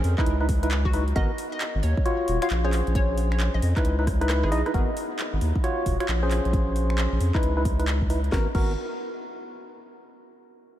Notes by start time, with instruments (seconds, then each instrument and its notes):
Already playing: synth stab C#4 G#4 C5
0.04 sub bass F2, open hi-hat
0.18 synth stab D#4 E4 B4, kick, clap
0.26 sub bass C#2, closed hi-hat
0.41 synth stab D#4 E4 B4
0.49 kick, open hi-hat
0.63 synth stab D#4 E4 B4, closed hi-hat
0.71 clap, closed hi-hat
0.85 sub bass C#2, synth pluck F#4, kick
0.93 synth stab D#4 E4 B4, open hi-hat
1.08 closed hi-hat
1.16 sub bass G#1, synth stab B3 F#4 A#4, synth pluck D#5, kick, closed hi-hat
1.38 open hi-hat
1.52 synth pluck D#5
1.61 clap, closed hi-hat
1.75 sub bass G#1
1.83 sub bass D#2, synth pluck C#5, open hi-hat
1.97 kick
2.06 synth stab F4 F#4 C#5, closed hi-hat
2.28 sub bass D#1, open hi-hat
2.42 synth stab F4 F#4 C#5, synth pluck F5, finger snap, closed hi-hat
2.50 sub bass A#1, clap, closed hi-hat
2.64 synth stab C#4 G#4 C5, synth pluck C#5
2.73 clap, open hi-hat
2.87 sub bass A#1, closed hi-hat
2.95 synth pluck C#5, kick, closed hi-hat
3.18 open hi-hat
3.32 synth pluck C#5, finger snap
3.40 clap, closed hi-hat
3.54 sub bass A#1, synth pluck D#5
3.62 sub bass F2, open hi-hat
3.76 synth stab D#4 E4 B4, kick, clap, closed hi-hat
3.85 sub bass C#2, closed hi-hat
3.99 synth stab D#4 E4 B4
4.07 kick, cross-stick, open hi-hat
4.21 synth stab D#4 E4 B4, cross-stick, closed hi-hat
4.30 cross-stick, clap, closed hi-hat
4.43 sub bass G#1, synth pluck G#4, cross-stick
4.52 sub bass B1, synth stab D#4 E4 D#5, open hi-hat
4.66 synth stab D#4 E4 B4, cross-stick, closed hi-hat
4.74 sub bass G#1, synth stab B3 F#4 A#4, kick, closed hi-hat
4.97 open hi-hat
5.19 clap, closed hi-hat
5.33 sub bass G#1
5.41 sub bass D#2, open hi-hat
5.56 kick
5.64 synth stab F4 F#4 C#5, closed hi-hat
5.86 sub bass D#1, kick, open hi-hat
6.00 synth stab F4 F#4 C#5, finger snap, closed hi-hat
6.08 sub bass A#1, clap, closed hi-hat
6.23 synth stab C#4 G#4 C5
6.31 clap, open hi-hat
6.45 sub bass A#1, closed hi-hat
6.53 kick, closed hi-hat
6.76 open hi-hat
6.90 finger snap
6.98 clap, closed hi-hat
7.12 sub bass A#1
7.20 sub bass F2, open hi-hat
7.35 synth stab D#4 E4 B4, kick, clap
7.43 sub bass C#2, closed hi-hat
7.57 synth stab D#4 E4 B4
7.65 kick, open hi-hat
7.79 synth stab D#4 E4 B4, closed hi-hat
7.88 clap, closed hi-hat
8.02 sub bass C#2, kick
8.10 synth stab D#4 E4 B4, open hi-hat
8.24 closed hi-hat
8.32 sub bass G#1, synth stab B3 F#4 A#4, kick, snare
8.55 sub bass G#1, synth stab B3 F#4 A#4, kick, crash